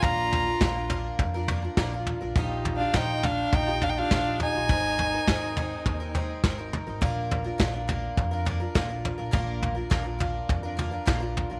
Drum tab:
SD |--o---o-|--o---o-|--o---o-|--o---o-|
FT |oooooooo|oooooooo|oooooooo|oooooooo|
BD |o-o-o-o-|o-o-o-o-|o-o-o-o-|o-o-o-o-|

SD |--o---o-|
FT |oooooooo|
BD |o-o-o-o-|